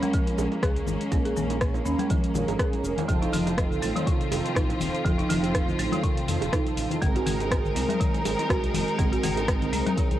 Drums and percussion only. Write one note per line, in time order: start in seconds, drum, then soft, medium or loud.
0.02 closed hi-hat soft
0.02 high conga medium
0.02 cabasa soft
0.13 kick loud
0.13 closed hi-hat medium
0.13 cabasa medium
0.26 closed hi-hat soft
0.26 low bongo medium
0.26 cabasa soft
0.38 high bongo loud
0.38 high conga medium
0.38 cabasa loud
0.52 closed hi-hat soft
0.52 low bongo medium
0.52 cabasa soft
0.62 kick loud
0.62 cross-stick loud
0.62 closed hi-hat soft
0.62 high conga medium
0.62 cabasa medium
0.76 closed hi-hat soft
0.76 cabasa soft
0.86 low bongo medium
0.86 low conga loud
0.86 cabasa medium
1.01 closed hi-hat soft
1.01 cabasa soft
1.12 kick loud
1.12 closed hi-hat medium
1.12 high bongo medium
1.12 low bongo medium
1.12 cabasa medium
1.25 closed hi-hat soft
1.25 cabasa soft
1.37 low conga medium
1.37 cabasa medium
1.50 closed hi-hat soft
1.50 high bongo medium
1.50 low bongo medium
1.50 cabasa soft
1.61 kick loud
1.61 cross-stick loud
1.61 closed hi-hat medium
1.61 cabasa soft
1.74 low bongo medium
1.74 cabasa soft
1.86 high conga medium
1.86 cabasa medium
1.99 closed hi-hat soft
1.99 high conga loud
1.99 cabasa soft
2.10 kick loud
2.10 closed hi-hat medium
2.10 low bongo medium
2.10 low conga medium
2.10 cabasa medium
2.24 closed hi-hat soft
2.24 cabasa soft
2.34 low bongo medium
2.34 low conga medium
2.34 cabasa medium
2.48 closed hi-hat soft
2.48 high bongo medium
2.48 cabasa soft
2.59 kick loud
2.59 cross-stick loud
2.59 closed hi-hat soft
2.59 cabasa soft
2.72 closed hi-hat soft
2.72 low bongo medium
2.72 high conga medium
2.72 cabasa soft
2.84 cabasa medium
2.98 closed hi-hat soft
2.98 low bongo medium
2.98 low conga medium
2.98 cabasa soft
3.09 kick loud
3.09 closed hi-hat medium
3.09 mid tom loud
3.09 high bongo medium
3.09 cabasa medium
3.22 closed hi-hat soft
3.22 low bongo medium
3.22 cabasa soft
3.32 open hi-hat medium
3.32 mid tom medium
3.32 low conga medium
3.32 cabasa medium
3.47 closed hi-hat soft
3.47 high bongo medium
3.47 low bongo medium
3.47 cabasa soft
3.58 kick loud
3.58 cross-stick loud
3.58 closed hi-hat medium
3.58 cabasa soft
3.72 mid tom loud
3.72 cabasa soft
3.82 open hi-hat medium
3.82 low bongo medium
3.82 high conga medium
3.82 cabasa medium
3.96 closed hi-hat soft
3.96 high conga medium
3.96 cabasa soft
4.07 kick loud
4.07 closed hi-hat medium
4.07 low bongo medium
4.07 cabasa soft
4.21 closed hi-hat soft
4.21 cabasa soft
4.31 open hi-hat medium
4.31 high bongo medium
4.31 high conga medium
4.31 cabasa medium
4.46 closed hi-hat soft
4.46 low bongo medium
4.46 cabasa soft
4.56 kick loud
4.56 cross-stick loud
4.56 closed hi-hat medium
4.56 high conga medium
4.56 cabasa soft
4.70 closed hi-hat soft
4.70 low bongo medium
4.70 cabasa soft
4.80 open hi-hat medium
4.80 low conga medium
4.80 cabasa medium
4.95 closed hi-hat soft
4.95 cabasa soft
5.05 kick loud
5.05 closed hi-hat medium
5.05 mid tom loud
5.05 high bongo medium
5.05 low bongo medium
5.05 high conga soft
5.05 cabasa medium
5.19 closed hi-hat soft
5.19 cabasa soft
5.30 open hi-hat medium
5.30 mid tom medium
5.30 low bongo medium
5.30 low conga medium
5.30 cabasa medium
5.43 closed hi-hat soft
5.43 high bongo medium
5.43 cabasa soft
5.54 kick loud
5.54 cross-stick medium
5.54 closed hi-hat medium
5.54 cabasa soft
5.68 mid tom medium
5.68 low bongo medium
5.68 cabasa soft
5.79 open hi-hat medium
5.79 high conga medium
5.79 cabasa medium
5.92 closed hi-hat soft
5.92 low bongo medium
5.92 high conga medium
5.92 cabasa soft
6.04 kick loud
6.04 closed hi-hat medium
6.04 cabasa soft
6.17 closed hi-hat soft
6.17 cabasa soft
6.28 open hi-hat medium
6.28 low bongo medium
6.28 low conga medium
6.28 cabasa medium
6.41 closed hi-hat soft
6.41 high bongo medium
6.41 cabasa soft
6.53 kick loud
6.53 cross-stick loud
6.53 closed hi-hat medium
6.53 low bongo medium
6.53 cabasa soft
6.66 closed hi-hat soft
6.66 high conga medium
6.66 cabasa soft
6.77 open hi-hat medium
6.77 cabasa medium
6.91 closed hi-hat soft
6.91 low bongo medium
6.91 low conga medium
6.91 cabasa soft
7.02 kick loud
7.02 closed hi-hat medium
7.02 mid tom medium
7.02 high bongo medium
7.02 cabasa soft
7.16 closed hi-hat soft
7.16 low bongo medium
7.16 cabasa soft
7.26 open hi-hat medium
7.26 mid tom medium
7.26 low conga medium
7.26 cabasa medium
7.40 closed hi-hat soft
7.40 high bongo medium
7.40 cabasa soft
7.51 kick loud
7.51 cross-stick loud
7.51 closed hi-hat medium
7.51 low bongo medium
7.51 cabasa soft
7.65 mid tom medium
7.65 cabasa soft
7.75 open hi-hat medium
7.75 low bongo medium
7.75 high conga medium
7.75 cabasa medium
7.88 closed hi-hat soft
7.88 high conga loud
7.88 cabasa soft
8.00 kick loud
8.00 closed hi-hat medium
8.00 cabasa soft
8.14 closed hi-hat soft
8.14 low bongo medium
8.14 cabasa soft
8.25 open hi-hat medium
8.25 high bongo loud
8.25 high conga medium
8.25 cabasa medium
8.39 closed hi-hat soft
8.39 low bongo medium
8.39 cabasa soft
8.50 kick loud
8.50 cross-stick loud
8.50 closed hi-hat medium
8.50 high conga medium
8.50 cabasa soft
8.64 closed hi-hat soft
8.64 cabasa soft
8.74 open hi-hat medium
8.74 low bongo medium
8.74 low conga loud
8.74 cabasa medium
8.88 closed hi-hat soft
8.88 cabasa soft
8.99 kick loud
8.99 closed hi-hat medium
8.99 mid tom medium
8.99 high bongo medium
8.99 low bongo medium
8.99 high conga medium
8.99 cabasa medium
9.13 closed hi-hat soft
9.13 cabasa soft
9.23 open hi-hat loud
9.23 mid tom medium
9.23 low conga medium
9.23 cabasa medium
9.37 closed hi-hat soft
9.37 high bongo medium
9.37 low bongo medium
9.37 cabasa soft
9.48 kick loud
9.48 cross-stick loud
9.48 closed hi-hat medium
9.48 cabasa soft
9.61 closed hi-hat soft
9.61 mid tom medium
9.61 low bongo medium
9.61 cabasa soft
9.73 open hi-hat medium
9.73 high conga medium
9.73 cabasa medium
9.86 closed hi-hat soft
9.86 high conga loud
9.86 cabasa soft
9.97 kick loud
9.97 closed hi-hat medium
9.97 low bongo medium
9.97 low conga medium
9.97 cabasa soft
10.11 closed hi-hat soft
10.11 cabasa soft